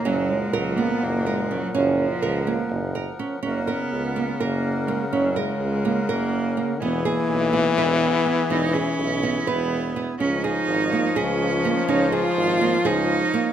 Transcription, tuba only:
X:1
M:7/8
L:1/8
Q:1/4=124
K:F#
V:1 name="Tuba" clef=bass
F,,,2 C,,2 F,,,3 | F,,,2 C,,2 F,,,2 z | F,,,2 C,,2 F,,,3 | F,,,2 C,,2 F,,,3 |
=E,,,2 B,,,2 E,,,2 z | =E,,,2 B,,,2 E,,,3 | C,,2 G,,,2 C,,3 | C,,2 G,,,2 C,,2 z |]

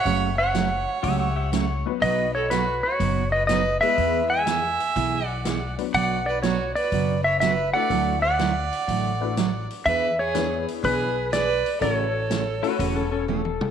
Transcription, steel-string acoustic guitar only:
X:1
M:4/4
L:1/8
Q:"Swing" 1/4=122
K:Bdor
V:1 name="Steel-string acoustic guitar"
[C,F,A,CF] z [C,F,A,CF] z [C,F,A,CF] z [C,F,A,CF] z | [B,,F,B,^DF] z [B,,F,B,DF] z [B,,F,B,DF] z [B,,F,B,DF] z | [E,B,EG] z [E,B,EG] z [E,B,EG] z [E,B,EG] z | [B,,F,B,DF] z [B,,F,B,DF] z [B,,F,B,DF] z [B,,F,B,DF] z |
[D,F,A,EF] z [D,F,A,EF] z [D,F,A,EF] z [D,F,A,EF] z | [E,B,DG] z [E,B,DG] z [E,B,DG] z [E,B,DG] z | [C,E,A,CF] z [C,E,A,CF] z [C,E,A,CF] z [C,E,A,CF] z |]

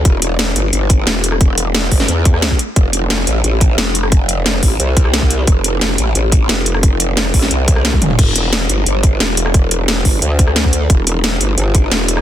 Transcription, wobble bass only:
X:1
M:4/4
L:1/8
Q:1/4=177
K:Ephr
V:1 name="Wobble bass" clef=bass
E,,,3 G,,, G,,,2 E,,,2- | E,,,3 G,,, E,,3 z | F,,,3 A,,, A,,,2 F,,,2- | F,,,3 A,,, C,,4 |
F,,,3 A,,, A,,,2 F,,,2- | F,,,3 A,,, C,,3 F,,, | E,,,3 G,,, G,,,2 E,,,2- | E,,,3 G,,, D,,4 |
E,,,3 G,,, G,,,2 E,,,2 |]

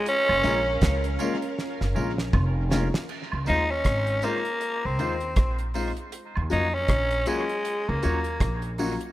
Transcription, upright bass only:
X:1
M:4/4
L:1/16
Q:"Swing 16ths" 1/4=79
K:Db
V:1 name="Upright bass" clef=bass
z G,,, B,,,2 D,,2 z3 G,,, B,,,2 F,,,3 z | z D,, E,,2 A,,,2 z3 C,, E,,2 B,,,3 z | z E,, F,,2 B,,,2 z3 D,, E,,2 B,,,3 z |]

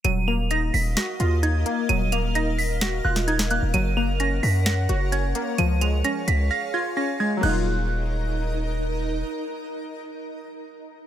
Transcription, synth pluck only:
X:1
M:4/4
L:1/8
Q:1/4=130
K:Ebm
V:1 name="Synth pluck"
G, B, E2 G F E B, | G, B, E2 G F E B, | G, B, D2 g G D B, | F, A, D2 f F D A, |
[G,B,EF]8- | [G,B,EF]8 |]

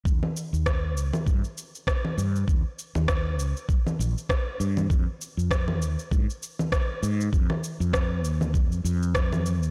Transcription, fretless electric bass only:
X:1
M:4/4
L:1/16
Q:"Swing 16ths" 1/4=99
K:Ebmix
V:1 name="Fretless electric bass" clef=bass
E,, z2 E,,3 D,, z G,, z4 z G,,2 | E,, z2 E,,3 D,, z3 B,,, z3 G,,2 | z3 F,,3 E,, z A,, z4 z A,,2 | F,, z2 F,,3 E,,3 F,, F,,4- F,, E,, |]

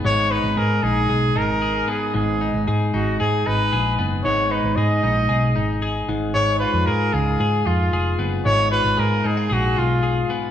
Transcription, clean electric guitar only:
X:1
M:4/4
L:1/16
Q:1/4=114
K:B
V:1 name="Clean electric guitar"
[G,,B,DG]2 D2 G2 D2 G2 D2 G2 B,2 | G,,2 D2 G2 D2 G2 D2 G2 B,2 | G,,2 D2 G2 D2 G2 D2 G2 G,,2 | G,,2 ^E2 G2 E2 G2 E2 G2 B,2 |
G,,2 ^E2 G2 D E G2 E2 G2 B,2 |]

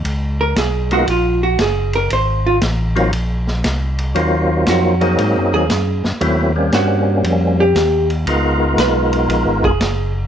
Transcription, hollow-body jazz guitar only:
X:1
M:4/4
L:1/8
Q:"Swing" 1/4=117
K:Abmix
V:1 name="Hollow-body jazz guitar"
z B A G F G A B | c F z6 | z2 G3 A2 z | z2 G3 =G2 z |
z2 _c3 A2 z |]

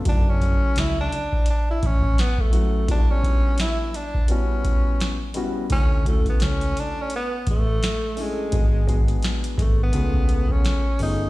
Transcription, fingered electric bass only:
X:1
M:4/4
L:1/16
Q:"Swing 16ths" 1/4=85
K:D
V:1 name="Fingered electric bass" clef=bass
F,,,3 z C,,2 z4 A,,,2 z4 | z16 | D,,3 z C,,2 z4 A,,,2 z4 | ^G,,,4 z2 G,,,2 C,,4 z2 =G,,,2 |]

